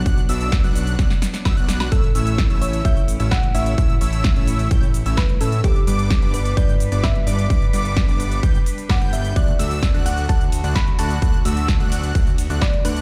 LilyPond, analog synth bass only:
\new Staff \with { instrumentName = "Analog synth bass" } { \clef bass \time 4/4 \key a \mixolydian \tempo 4 = 129 b,,8 b,,8. b,,8. b,,16 r8. b,,16 b,,8. | a,,8 a,,8. a,,8. r8. a,,8. a,,8 | a,,8 a,,8. a,,8. a,,8. a,,8. a,8 | g,,8 g,,8. g,,8. g,,8. g,,8. g,,8 |
g,,8 g,,8. g,,8. g,,16 r8. g,,16 g,,8. | d,8 d,8. d,8. r8. d,8. d,8 | d,8 d,8. d,8. d,8. d,8. d,8 | }